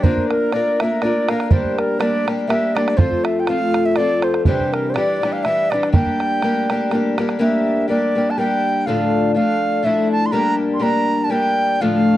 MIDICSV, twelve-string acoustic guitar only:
0, 0, Header, 1, 2, 480
1, 0, Start_track
1, 0, Tempo, 490196
1, 32, Time_signature, 3, 2, 24, 8
1, 11919, End_track
2, 0, Start_track
2, 0, Title_t, "Twelve-string acoustic guitar"
2, 0, Program_c, 0, 25
2, 32, Note_on_c, 0, 58, 64
2, 42, Note_on_c, 0, 62, 63
2, 49, Note_on_c, 0, 65, 68
2, 58, Note_on_c, 0, 70, 65
2, 510, Note_off_c, 0, 58, 0
2, 514, Note_on_c, 0, 58, 45
2, 519, Note_off_c, 0, 62, 0
2, 523, Note_on_c, 0, 62, 50
2, 524, Note_off_c, 0, 65, 0
2, 541, Note_on_c, 0, 65, 62
2, 544, Note_off_c, 0, 70, 0
2, 548, Note_on_c, 0, 70, 59
2, 780, Note_off_c, 0, 58, 0
2, 785, Note_off_c, 0, 62, 0
2, 793, Note_off_c, 0, 65, 0
2, 793, Note_on_c, 0, 58, 43
2, 797, Note_off_c, 0, 70, 0
2, 806, Note_on_c, 0, 62, 48
2, 813, Note_on_c, 0, 65, 50
2, 824, Note_on_c, 0, 70, 54
2, 983, Note_off_c, 0, 58, 0
2, 995, Note_on_c, 0, 58, 54
2, 1000, Note_off_c, 0, 62, 0
2, 1008, Note_off_c, 0, 65, 0
2, 1011, Note_on_c, 0, 62, 48
2, 1019, Note_off_c, 0, 70, 0
2, 1020, Note_on_c, 0, 65, 60
2, 1032, Note_on_c, 0, 70, 55
2, 1252, Note_off_c, 0, 58, 0
2, 1263, Note_off_c, 0, 62, 0
2, 1264, Note_on_c, 0, 58, 54
2, 1271, Note_off_c, 0, 65, 0
2, 1275, Note_on_c, 0, 62, 45
2, 1280, Note_off_c, 0, 70, 0
2, 1283, Note_on_c, 0, 65, 54
2, 1292, Note_on_c, 0, 70, 61
2, 1470, Note_off_c, 0, 58, 0
2, 1474, Note_off_c, 0, 62, 0
2, 1474, Note_on_c, 0, 55, 65
2, 1481, Note_on_c, 0, 58, 67
2, 1482, Note_off_c, 0, 65, 0
2, 1485, Note_on_c, 0, 62, 67
2, 1491, Note_off_c, 0, 70, 0
2, 1494, Note_on_c, 0, 67, 55
2, 1941, Note_off_c, 0, 55, 0
2, 1953, Note_on_c, 0, 55, 57
2, 1954, Note_off_c, 0, 58, 0
2, 1965, Note_off_c, 0, 62, 0
2, 1966, Note_on_c, 0, 58, 58
2, 1969, Note_off_c, 0, 67, 0
2, 1975, Note_on_c, 0, 62, 61
2, 1981, Note_on_c, 0, 67, 58
2, 2209, Note_off_c, 0, 55, 0
2, 2219, Note_off_c, 0, 58, 0
2, 2220, Note_on_c, 0, 55, 42
2, 2227, Note_off_c, 0, 62, 0
2, 2231, Note_on_c, 0, 58, 51
2, 2233, Note_off_c, 0, 67, 0
2, 2239, Note_on_c, 0, 62, 47
2, 2245, Note_on_c, 0, 67, 52
2, 2411, Note_off_c, 0, 55, 0
2, 2423, Note_on_c, 0, 55, 48
2, 2426, Note_off_c, 0, 58, 0
2, 2434, Note_off_c, 0, 62, 0
2, 2437, Note_on_c, 0, 58, 61
2, 2443, Note_off_c, 0, 67, 0
2, 2446, Note_on_c, 0, 62, 60
2, 2455, Note_on_c, 0, 67, 65
2, 2681, Note_off_c, 0, 55, 0
2, 2693, Note_on_c, 0, 55, 48
2, 2696, Note_off_c, 0, 58, 0
2, 2704, Note_off_c, 0, 62, 0
2, 2708, Note_on_c, 0, 58, 46
2, 2710, Note_off_c, 0, 67, 0
2, 2716, Note_on_c, 0, 62, 50
2, 2722, Note_on_c, 0, 67, 54
2, 2902, Note_off_c, 0, 55, 0
2, 2906, Note_on_c, 0, 53, 70
2, 2910, Note_off_c, 0, 58, 0
2, 2914, Note_on_c, 0, 60, 63
2, 2919, Note_off_c, 0, 62, 0
2, 2923, Note_on_c, 0, 57, 65
2, 2925, Note_off_c, 0, 67, 0
2, 2929, Note_on_c, 0, 65, 74
2, 3392, Note_off_c, 0, 53, 0
2, 3404, Note_on_c, 0, 53, 55
2, 3405, Note_off_c, 0, 57, 0
2, 3408, Note_off_c, 0, 65, 0
2, 3411, Note_off_c, 0, 60, 0
2, 3415, Note_on_c, 0, 60, 56
2, 3424, Note_on_c, 0, 57, 58
2, 3435, Note_on_c, 0, 65, 58
2, 3873, Note_off_c, 0, 53, 0
2, 3884, Note_on_c, 0, 53, 47
2, 3888, Note_off_c, 0, 60, 0
2, 3896, Note_off_c, 0, 57, 0
2, 3899, Note_on_c, 0, 60, 57
2, 3902, Note_off_c, 0, 65, 0
2, 3912, Note_on_c, 0, 57, 58
2, 3918, Note_on_c, 0, 65, 65
2, 4364, Note_on_c, 0, 48, 69
2, 4366, Note_off_c, 0, 53, 0
2, 4373, Note_on_c, 0, 52, 65
2, 4374, Note_off_c, 0, 60, 0
2, 4378, Note_off_c, 0, 57, 0
2, 4378, Note_on_c, 0, 55, 77
2, 4382, Note_on_c, 0, 62, 62
2, 4383, Note_off_c, 0, 65, 0
2, 4391, Note_on_c, 0, 67, 65
2, 4826, Note_off_c, 0, 52, 0
2, 4838, Note_on_c, 0, 52, 59
2, 4847, Note_off_c, 0, 48, 0
2, 4850, Note_off_c, 0, 55, 0
2, 4854, Note_on_c, 0, 55, 48
2, 4860, Note_off_c, 0, 62, 0
2, 4864, Note_on_c, 0, 62, 52
2, 4870, Note_off_c, 0, 67, 0
2, 4874, Note_on_c, 0, 67, 67
2, 5097, Note_off_c, 0, 52, 0
2, 5108, Note_on_c, 0, 52, 49
2, 5113, Note_off_c, 0, 55, 0
2, 5120, Note_off_c, 0, 62, 0
2, 5125, Note_off_c, 0, 67, 0
2, 5125, Note_on_c, 0, 55, 57
2, 5137, Note_on_c, 0, 62, 52
2, 5142, Note_on_c, 0, 67, 58
2, 5324, Note_off_c, 0, 52, 0
2, 5335, Note_off_c, 0, 55, 0
2, 5336, Note_on_c, 0, 52, 52
2, 5341, Note_off_c, 0, 62, 0
2, 5344, Note_off_c, 0, 67, 0
2, 5345, Note_on_c, 0, 55, 57
2, 5360, Note_on_c, 0, 62, 58
2, 5368, Note_on_c, 0, 67, 60
2, 5581, Note_off_c, 0, 52, 0
2, 5592, Note_on_c, 0, 52, 49
2, 5597, Note_off_c, 0, 55, 0
2, 5606, Note_off_c, 0, 62, 0
2, 5609, Note_on_c, 0, 55, 48
2, 5612, Note_off_c, 0, 67, 0
2, 5617, Note_on_c, 0, 62, 58
2, 5634, Note_on_c, 0, 67, 54
2, 5789, Note_off_c, 0, 55, 0
2, 5797, Note_off_c, 0, 52, 0
2, 5801, Note_on_c, 0, 55, 65
2, 5807, Note_off_c, 0, 62, 0
2, 5813, Note_off_c, 0, 67, 0
2, 5815, Note_on_c, 0, 58, 67
2, 5819, Note_on_c, 0, 62, 60
2, 5825, Note_on_c, 0, 67, 69
2, 6285, Note_off_c, 0, 55, 0
2, 6288, Note_on_c, 0, 55, 58
2, 6300, Note_off_c, 0, 58, 0
2, 6304, Note_on_c, 0, 58, 63
2, 6305, Note_off_c, 0, 62, 0
2, 6309, Note_on_c, 0, 62, 56
2, 6316, Note_off_c, 0, 67, 0
2, 6319, Note_on_c, 0, 67, 65
2, 6545, Note_off_c, 0, 55, 0
2, 6552, Note_off_c, 0, 58, 0
2, 6557, Note_on_c, 0, 55, 56
2, 6562, Note_off_c, 0, 62, 0
2, 6563, Note_on_c, 0, 58, 52
2, 6568, Note_off_c, 0, 67, 0
2, 6578, Note_on_c, 0, 62, 59
2, 6586, Note_on_c, 0, 67, 54
2, 6755, Note_off_c, 0, 55, 0
2, 6765, Note_off_c, 0, 58, 0
2, 6766, Note_on_c, 0, 55, 57
2, 6777, Note_on_c, 0, 58, 56
2, 6781, Note_off_c, 0, 62, 0
2, 6785, Note_off_c, 0, 67, 0
2, 6792, Note_on_c, 0, 62, 58
2, 6801, Note_on_c, 0, 67, 68
2, 7015, Note_off_c, 0, 55, 0
2, 7025, Note_off_c, 0, 58, 0
2, 7026, Note_on_c, 0, 55, 55
2, 7035, Note_off_c, 0, 62, 0
2, 7037, Note_on_c, 0, 58, 59
2, 7042, Note_off_c, 0, 67, 0
2, 7047, Note_on_c, 0, 62, 56
2, 7054, Note_on_c, 0, 67, 52
2, 7221, Note_off_c, 0, 55, 0
2, 7226, Note_off_c, 0, 58, 0
2, 7233, Note_on_c, 0, 55, 56
2, 7238, Note_on_c, 0, 58, 73
2, 7240, Note_off_c, 0, 62, 0
2, 7241, Note_off_c, 0, 67, 0
2, 7251, Note_on_c, 0, 62, 72
2, 7252, Note_on_c, 0, 67, 84
2, 7702, Note_off_c, 0, 55, 0
2, 7714, Note_on_c, 0, 55, 49
2, 7716, Note_off_c, 0, 58, 0
2, 7728, Note_on_c, 0, 58, 58
2, 7729, Note_off_c, 0, 67, 0
2, 7737, Note_off_c, 0, 62, 0
2, 7741, Note_on_c, 0, 62, 58
2, 7750, Note_on_c, 0, 67, 60
2, 7970, Note_off_c, 0, 55, 0
2, 7981, Note_off_c, 0, 58, 0
2, 7982, Note_on_c, 0, 55, 49
2, 7992, Note_on_c, 0, 58, 51
2, 7994, Note_off_c, 0, 62, 0
2, 7995, Note_off_c, 0, 67, 0
2, 8005, Note_on_c, 0, 62, 43
2, 8007, Note_on_c, 0, 67, 60
2, 8188, Note_off_c, 0, 55, 0
2, 8198, Note_off_c, 0, 58, 0
2, 8200, Note_on_c, 0, 55, 57
2, 8209, Note_off_c, 0, 62, 0
2, 8209, Note_on_c, 0, 58, 56
2, 8214, Note_off_c, 0, 67, 0
2, 8220, Note_on_c, 0, 62, 63
2, 8237, Note_on_c, 0, 67, 60
2, 8681, Note_off_c, 0, 55, 0
2, 8685, Note_off_c, 0, 58, 0
2, 8686, Note_on_c, 0, 38, 64
2, 8686, Note_on_c, 0, 45, 62
2, 8695, Note_on_c, 0, 53, 61
2, 8696, Note_off_c, 0, 62, 0
2, 8699, Note_off_c, 0, 67, 0
2, 8700, Note_on_c, 0, 62, 70
2, 8701, Note_on_c, 0, 57, 63
2, 9139, Note_off_c, 0, 53, 0
2, 9150, Note_off_c, 0, 57, 0
2, 9151, Note_on_c, 0, 53, 53
2, 9162, Note_on_c, 0, 57, 61
2, 9163, Note_off_c, 0, 38, 0
2, 9163, Note_off_c, 0, 45, 0
2, 9170, Note_off_c, 0, 62, 0
2, 9174, Note_on_c, 0, 62, 55
2, 9611, Note_off_c, 0, 53, 0
2, 9619, Note_off_c, 0, 57, 0
2, 9622, Note_on_c, 0, 53, 60
2, 9631, Note_on_c, 0, 57, 48
2, 9643, Note_off_c, 0, 62, 0
2, 9647, Note_on_c, 0, 62, 58
2, 9657, Note_on_c, 0, 64, 65
2, 10102, Note_off_c, 0, 53, 0
2, 10106, Note_on_c, 0, 55, 66
2, 10112, Note_off_c, 0, 57, 0
2, 10116, Note_on_c, 0, 58, 78
2, 10119, Note_off_c, 0, 62, 0
2, 10123, Note_on_c, 0, 62, 66
2, 10125, Note_off_c, 0, 64, 0
2, 10129, Note_on_c, 0, 67, 72
2, 10559, Note_off_c, 0, 55, 0
2, 10567, Note_off_c, 0, 58, 0
2, 10570, Note_on_c, 0, 55, 64
2, 10579, Note_on_c, 0, 58, 52
2, 10591, Note_off_c, 0, 67, 0
2, 10593, Note_off_c, 0, 62, 0
2, 10597, Note_on_c, 0, 62, 66
2, 10603, Note_on_c, 0, 67, 62
2, 11048, Note_off_c, 0, 55, 0
2, 11059, Note_on_c, 0, 55, 60
2, 11060, Note_off_c, 0, 58, 0
2, 11071, Note_on_c, 0, 58, 60
2, 11074, Note_off_c, 0, 67, 0
2, 11080, Note_off_c, 0, 62, 0
2, 11084, Note_on_c, 0, 62, 59
2, 11086, Note_on_c, 0, 67, 54
2, 11544, Note_off_c, 0, 55, 0
2, 11550, Note_off_c, 0, 58, 0
2, 11557, Note_on_c, 0, 38, 55
2, 11558, Note_off_c, 0, 67, 0
2, 11565, Note_on_c, 0, 45, 56
2, 11568, Note_off_c, 0, 62, 0
2, 11568, Note_on_c, 0, 53, 77
2, 11572, Note_on_c, 0, 62, 67
2, 11573, Note_on_c, 0, 57, 68
2, 11919, Note_off_c, 0, 38, 0
2, 11919, Note_off_c, 0, 45, 0
2, 11919, Note_off_c, 0, 53, 0
2, 11919, Note_off_c, 0, 57, 0
2, 11919, Note_off_c, 0, 62, 0
2, 11919, End_track
0, 0, End_of_file